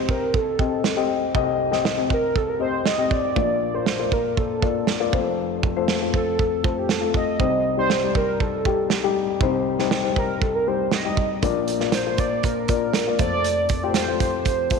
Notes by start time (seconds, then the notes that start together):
Already playing: C2 C3 C4 G4 C5 D#5
0.09 A#4, kick
0.34 A4, kick
0.59 C4 G4 D#5, kick
0.84 snare
0.96 C4 G4 D#5
1.34 C2 C3 C4 G4 D#5, kick
1.71 C4 G4 D#5, snare
1.85 snare
1.97 C4 G4 D#5
2.10 A#4, kick
2.36 A4, kick
2.49 A#4
2.59 C4 G4 C5 D#5
2.86 D#5, snare
2.98 C4 G4 D#5
3.11 D5, kick
3.36 A#1 A#2 A#3 F4 D5, kick
3.74 A#3 F4 C5
3.86 snare
3.99 A#3 F4 D5
4.12 A#4, kick
4.37 A4, kick
4.62 A#3 F4 D5, kick
4.87 snare
5.00 A#3 F4 D5
5.12 F1 F2 A3 F4 C5, kick
5.63 kick
5.76 A3 F4 C5
5.88 snare
6.01 A3 F4 C5
6.14 A4, kick
6.39 kick
6.63 A3 F4 C5, kick
6.78 G4
6.89 A4, snare
7.01 A3 F4 A4
7.14 D#5, kick
7.39 C2 C3 G3 D#4 C5, kick
7.77 G3 D#4 C5 D5
7.90 snare
8.03 G3 D#4 D5
8.15 A#4, kick
8.40 A4, kick
8.65 G3 D#4 G4, kick
8.90 snare
9.04 G3 D#4 G4
9.41 C2 C3 G3 D#4 C5, kick
9.79 G3 D#4 C5, snare
9.91 snare
10.03 G3 D#4 C5
10.16 A#4, kick
10.42 A4, kick
10.55 A#4
10.67 G3 D#4 C5
10.92 D#5, snare
11.05 G3 D#4 G4
11.17 kick
11.43 A#1 A#2 A#3 F4 D5, kick, closed hi-hat
11.68 closed hi-hat
11.80 A#3 F4 D5, snare
11.92 C5, snare, closed hi-hat
12.06 A#3 F4 C5
12.18 D5, kick, closed hi-hat
12.43 A#4, kick, closed hi-hat
12.68 A#3 F4 D5, kick, closed hi-hat
12.94 snare, closed hi-hat
13.07 A#3 F4 D5
13.19 F1 F2 A3 F4 C5 D5, kick, closed hi-hat
13.44 closed hi-hat
13.69 kick, closed hi-hat
13.83 A3 F4 G4 C5
13.94 C5, snare, closed hi-hat
14.07 A3 F4 C5
14.20 C5, kick, closed hi-hat
14.45 kick, closed hi-hat
14.70 A3 F4 C5, kick, closed hi-hat